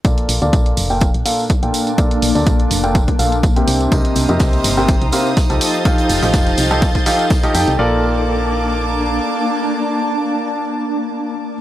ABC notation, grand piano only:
X:1
M:4/4
L:1/16
Q:"Swing 16ths" 1/4=124
K:Bb
V:1 name="Grand piano"
[B,,B,FAd]3 [B,,B,FAd]4 [B,,B,FAg] z2 [B,,B,FAf] z2 [B,,B,FAg]3 | [B,,B,FAd]3 [B,,B,FAd]4 [B,,B,FAg] z2 [B,,B,FAf] z2 [C,CGBg]3 | [C,CGBe]3 [C,CGBe]4 [C,CGBg] z2 [C,CGBf] z2 [F,EGAa]3 | [F,EGAf]3 [F,EGAf]4 [F,EGAa] z2 [F,EGAf] z2 [F,EGAe] [EGAg] z |
[B,FAd]16- | [B,FAd]16 |]